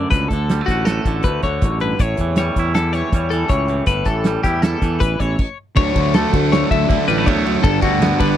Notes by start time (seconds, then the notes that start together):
Already playing: D2 D3 A3 D5
0.11 C#2 D2 B4, kick, closed hi-hat
0.28 D2 A4, kick, closed hi-hat
0.33 D3
0.49 G3, snare, closed hi-hat
0.61 A3
0.66 A1 F#4, kick, closed hi-hat
0.71 F#4
0.85 A4, snare, closed hi-hat
0.90 A2
1.05 A1 D3, kick, closed hi-hat
1.23 D2 B4, kick, closed hi-hat
1.27 A3
1.42 D2 D3 C#5, kick, snare, closed hi-hat
1.62 A1 F#2, kick, closed hi-hat
1.80 G2 B4, closed hi-hat
1.99 A1 A2 C#5, kick, closed hi-hat
2.17 E2 E3, kick, closed hi-hat
2.36 G3 C#5, snare, closed hi-hat
2.56 E2 E4, kick, closed hi-hat
2.74 E2 A4, snare, closed hi-hat
2.93 E3 C#5, snare, closed hi-hat
3.12 E2 G3, kick, closed hi-hat
3.30 E3 A4, closed hi-hat
3.49 C#2 A2 C#5, kick, closed hi-hat
3.68 E3, closed hi-hat
3.86 G1 A2 B4, kick, closed hi-hat
4.05 A1 E3 A4, kick, closed hi-hat
4.24 G3, snare, closed hi-hat
4.43 E2 E4 G4, kick, snare, closed hi-hat
4.62 E2 A4, snare, closed hi-hat
4.82 E2 E3, kick, snare, closed hi-hat
5.00 A1 B4, kick, closed hi-hat
5.20 A1 E3 C#5, kick, closed hi-hat
5.39 kick, crash
5.76 D2 D3 F#3 A3 D4 C#5, kick, ride
5.95 D2 D3 F#3 A3 D4, kick, ride
6.14 D3 F#3 A3 D4 A4, snare, ride
6.18 A3
6.33 D2 F#3 A3 D4, kick, snare, ride
6.52 C#5, snare, ride
6.71 D2 E5, kick, ride
6.89 D2 D3 F#3 A3 D4, kick, snare, ride
7.08 A1 F#3 G3 A3 D4 B4, snare, ride
7.18 A3
7.26 D2 E2 D3 F#3 A3 D4 C#5, kick, ride
7.44 F#2 F#3 A3 D4, ride
7.61 G1 G2 D3 G3 B3 D4 A4, kick, ride
7.81 D2 D3 G3 B3 D4 F#4, kick, snare, ride
8.00 G2 D3 G3 B3 D4, snare, ride
8.19 G1 G3 B3 D4 B4, kick, ride